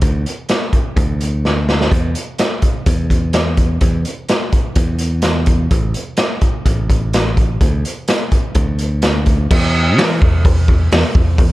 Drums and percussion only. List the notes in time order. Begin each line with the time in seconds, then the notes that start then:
0.02 kick, closed hi-hat
0.26 closed hi-hat
0.49 snare, closed hi-hat
0.73 kick, closed hi-hat
0.97 kick, closed hi-hat
1.21 closed hi-hat
1.45 snare
1.69 snare
1.81 snare
1.92 kick, closed hi-hat
2.15 closed hi-hat
2.38 snare, closed hi-hat
2.62 kick, closed hi-hat
2.86 kick, closed hi-hat
3.10 kick, closed hi-hat
3.33 snare, closed hi-hat
3.57 kick, closed hi-hat
3.81 kick, closed hi-hat
4.05 closed hi-hat
4.29 snare, closed hi-hat
4.52 kick, closed hi-hat
4.75 kick, closed hi-hat
4.98 closed hi-hat
5.22 snare, closed hi-hat
5.46 kick, closed hi-hat
5.71 kick, closed hi-hat
5.94 closed hi-hat
6.17 snare, closed hi-hat
6.41 kick, closed hi-hat
6.66 kick, closed hi-hat
6.90 kick, closed hi-hat
7.13 snare, closed hi-hat
7.37 kick, closed hi-hat
7.61 kick, closed hi-hat
7.85 closed hi-hat
8.08 snare, closed hi-hat
8.32 kick, closed hi-hat
8.55 kick, closed hi-hat
8.79 closed hi-hat
9.02 snare, closed hi-hat
9.26 kick, closed hi-hat
9.51 kick, crash
9.98 snare, open hi-hat
10.22 kick
10.45 kick, open hi-hat
10.68 kick
10.92 snare, open hi-hat
11.15 kick
11.38 kick, open hi-hat